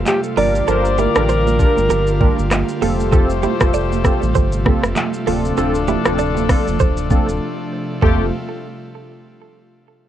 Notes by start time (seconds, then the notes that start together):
Already playing: C3 G3 A3 F4
0.06 G4, clap, high conga, low conga, shaker
0.24 shaker
0.37 G1 D3 G3 A#3 D4 F4 G4 A#4 D5, open hi-hat, high conga, low conga
0.55 shaker
0.67 G1 D4 F4 G4 A4 A#4 C5, low conga, shaker
0.85 shaker
0.98 E4 G4 A#4, high conga, shaker
1.15 A1 D4 F4 G4 A4 A#4, cross-stick, shaker
1.29 G4 C5, shaker
1.47 high conga, shaker
1.59 D4 F4 G4 A#4, kick, shaker
1.77 G1, high conga, shaker
1.88 G1 G4 A#4, low conga, shaker
2.07 shaker
2.20 D4 F4 G4 A#4, kick, high conga
2.38 G1, shaker
2.51 cross-stick, clap, high conga, low conga, shaker
2.69 shaker
2.81 F1 C3 A3 C4 F4 G4 A4 C5, open hi-hat, high conga, low conga
3.00 shaker
3.12 C4 F4 G4 A4, kick, low conga, shaker
3.30 shaker
3.43 E4 G4, high conga, shaker
3.60 F1 C4 F4 G4 A4, kick, cross-stick, shaker
3.74 A4 D5, shaker
3.92 high conga, shaker
4.04 C4 F4 G4 A4, kick, cross-stick, shaker
4.22 A1, high conga, shaker
4.33 G1 A4 C5, kick, low conga, shaker
4.52 shaker
4.65 C4 F4 G4 A4, kick, cross-stick, high conga
4.83 F1, cross-stick, shaker
4.96 clap, high conga, low conga, shaker
5.13 shaker
5.26 D1 F3 C4 D4 F4 A4, open hi-hat, high conga, low conga
5.45 shaker
5.57 D1 C4 D4 F4 A4, shaker
5.75 shaker
5.88 E4 G4, high conga, shaker
6.05 D1 C4 D4 F4 A4, cross-stick, shaker
6.19 A4 D5, shaker
6.37 high conga, shaker
6.49 C4 D4 F4 A4, kick, cross-stick, open hi-hat, shaker
6.67 F1, high conga, shaker
6.78 D1 A4 C5, kick, low conga, shaker
6.97 shaker
7.10 C4 D4 F4 A4, kick, high conga, shaker
7.28 D1, shaker
8.02 F1 C3 G3 A3 C4 F4 G4 A4, kick, floor tom, high conga